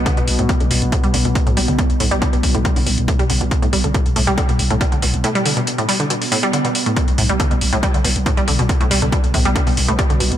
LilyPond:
<<
  \new Staff \with { instrumentName = "Synth arpeggio sound" } { \clef bass \time 4/4 \key b \minor \tempo 4 = 139 d16 b,16 r16 a,16 g16 d16 b,16 r16 a,16 g16 d16 b,16 r16 a,16 g16 d16 | b,16 r16 a,16 g16 d16 b,16 r16 a,16 g16 d16 b,16 r16 a,16 g16 d16 b,16 | r16 a,16 g16 d16 b,16 r16 a,16 g16 d16 b,16 r16 a,16 g16 d16 b,16 r16 | a,16 g16 d16 b,16 r16 a,16 g16 d16 b,16 r16 a,16 g16 d16 b,16 r16 a,16 |
b,16 r16 a,16 g16 d16 b,16 r16 a,16 g16 d16 b,16 r16 a,16 g16 d16 b,16 | r16 a,16 g16 d16 b,16 r16 a,16 g16 d16 b,16 r16 a,16 g16 d16 b,16 r16 | }
  \new Staff \with { instrumentName = "Synth drone" } { \clef bass \time 4/4 \key b \minor b,1~ | b,1~ | b,1~ | b,1 |
b,1~ | b,1 | }
  \new Staff \with { instrumentName = "808-style bass" } { \clef bass \time 4/4 \key b \minor r16 b,,16 b,,16 b,,16 r16 b,,16 b,,16 b,,16 r16 b,,16 b,,16 b,,16 r16 b,,16 b,,16 b,,16 | r16 b,,16 b,,16 b,,16 r16 b,,16 b,,16 b,,16 r16 b,,16 b,,16 b,,16 r16 b,,16 b,,16 b,,16 | r16 b,,16 b,,16 b,,16 r16 b,,16 b,,16 b,,16 r16 b,,16 b,,16 b,,16 r16 b,,16 b,,16 b,,16 | r1 |
r16 b,,16 b,,16 b,,16 r16 b,,16 b,,16 b,,16 r16 b,,16 b,,16 b,,16 r16 b,,16 b,,16 b,,16 | r16 b,,16 b,,16 b,,16 r16 b,,16 b,,16 b,,16 r16 b,,16 b,,16 b,,16 r16 b,,16 b,,16 b,,16 | }
  \new DrumStaff \with { instrumentName = "Drums" } \drummode { \time 4/4 <hh bd>16 hh16 hho16 hh16 <hh bd>16 hh16 hho16 hh16 <hh bd>16 hh16 hho16 hh16 <hh bd>16 hh16 hho16 hh16 | <hh bd>16 hh16 hho16 hh16 <hh bd>16 hh16 <hho bd>16 hh16 <hh bd>16 hho16 hho16 hh16 <hh bd>16 hh16 hho16 hh16 | <hh bd>16 hh16 hho16 hh16 <hh bd>16 hh16 hho16 hh16 <hh bd>16 hh16 hho16 hh16 <hh bd>16 hh16 hho16 hh16 | hh16 hh16 hho16 hh16 hh16 hh16 hho8 hh16 hho16 hho16 hh16 hh16 hh16 hho16 hh16 |
<hh bd>16 hh16 hho16 hh16 <hh bd>16 hh16 hho16 hh16 <hh bd>16 hh16 hho16 hh16 <hh bd>16 hh16 hho16 hh16 | <hh bd>16 hh16 hho16 hh16 <hh bd>16 hh16 <hho bd>16 hh16 <hh bd>16 hho16 hho16 hh16 <hh bd>16 hh16 hho16 hh16 | }
>>